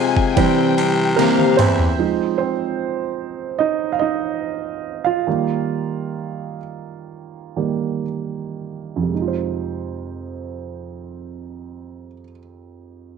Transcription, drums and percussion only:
0.16 kick medium
0.37 kick medium
0.37 ride medium
0.78 ride medium
1.19 snare medium
1.19 ride medium
1.39 high tom medium
1.59 mid tom medium
1.59 ride medium
1.79 floor tom medium

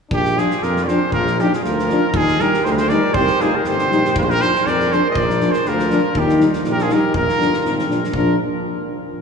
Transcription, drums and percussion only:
0.11 kick medium
0.25 snare soft
0.38 snare soft
0.50 snare soft
0.62 snare soft
0.76 snare soft
0.88 snare soft
1.12 kick medium
1.27 snare soft
1.39 snare soft
1.53 snare soft
1.64 snare soft
1.79 snare soft
1.89 snare soft
2.14 kick medium
2.28 snare soft
2.39 snare soft
2.53 snare soft
2.65 snare soft
2.77 snare soft
2.89 snare soft
3.14 kick medium
3.27 snare soft
3.40 snare soft
3.64 snare soft
3.79 snare soft
3.91 snare soft
4.05 snare soft
4.16 kick medium
4.30 snare soft
4.41 snare soft
4.55 snare soft
4.67 snare soft
4.80 snare soft
4.92 snare soft
5.15 kick medium
5.30 snare soft
5.40 snare soft
5.53 snare soft
5.65 snare soft
5.79 snare soft
5.90 snare soft
6.15 kick medium
6.29 snare soft
6.40 snare soft
6.53 snare soft
6.64 snare soft
6.79 snare soft
6.89 snare soft
7.14 kick medium
7.29 snare soft
7.41 snare soft
7.53 snare soft
7.65 snare soft
7.79 snare soft
7.90 snare soft
8.04 snare soft
8.14 kick medium

